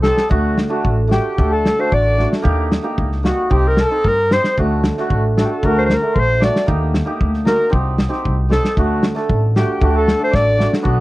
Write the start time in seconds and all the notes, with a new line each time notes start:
0.02 C4 D#4 G4 A4, snare
0.17 snare
0.29 D2 A3 D4 F#4, kick
0.58 snare
0.69 A3 D4 F#4
0.85 A1, kick
1.08 A3 D4 F#4, snare
1.12 G4
1.38 D2 A3 D4 A4, kick
1.51 A4
1.66 snare
1.78 A3 D4 F#4 C5
1.92 A1 D5, kick
2.17 A3 D4 F#4, snare
2.33 snare
2.42 D#2 A#3 D#4 G4, kick
2.72 snare
2.83 A#3 D#4 G4
2.98 C#2, kick
3.12 snare
3.23 A#3 D#4 F#4 G4, snare
3.50 C2 C4 D#4 G4, kick
3.68 A#4
3.77 A4, snare
3.83 A4
3.90 C4 D#4 A#4
4.04 G2 A#4, kick
4.31 C4 D#4 G4 C5, snare
4.44 snare
4.57 D2 A3 D4 F#4, kick
4.84 snare
4.98 A3 D4 F#4, snare
5.10 A1, kick
5.37 A3 D4 F#4 A4, snare
5.44 G4
5.52 A4
5.63 D2 A3 D4 F#4 A#4, kick
5.79 A#4 C5
5.86 A#4 C5, snare
5.93 A#4
6.02 A3 D4 A4
6.14 A#1 C5, kick
6.19 C5
6.40 A3 D4 F#4 D5, snare
6.45 D5
6.56 snare
6.66 D#2 A#3 D#4 G4, kick
6.94 snare
7.05 A#3 D#4 G4
7.21 D2, kick
7.34 snare
7.45 A#3 D#4 F#4 A#4, snare
7.70 C2 C4 D#4 G4, kick
7.98 snare
8.09 C4 D#4 G4
8.13 snare
8.25 C2, kick
8.49 C4 D#4 G4 A4, snare
8.65 snare
8.77 D2 A3 D4 F#4, kick
9.03 snare
9.15 A3 D4 A4, snare
9.29 A1, kick
9.56 A3 D4 F#4 G4, snare
9.81 D2 A3 D4 F#4, kick
9.94 A4
10.08 snare
10.19 A3 D4 A4
10.24 C5
10.31 A1 D5, kick, snare
10.35 D5
10.57 A3 D4 F#4, snare
10.73 snare
10.82 B1 B3 D4 F#4, kick